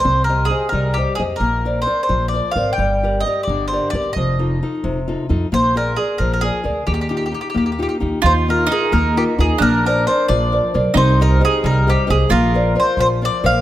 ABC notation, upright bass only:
X:1
M:6/8
L:1/8
Q:3/8=88
K:Eb
V:1 name="Upright bass" clef=bass
C,,3 C,,2 F,, | B,,,3 B,,,2 A,,, | G,,,3 G,,,2 G,,, | F,,,3 F,,,2 F,, |
B,,,3 B,,,2 D,, | E,,3 E,,2 E,, | E,,3 E,,2 E,, | B,,,3 B,,,2 _C,, |
C,,3 C,,2 C,, | B,,,3 B,,,2 B,,, |]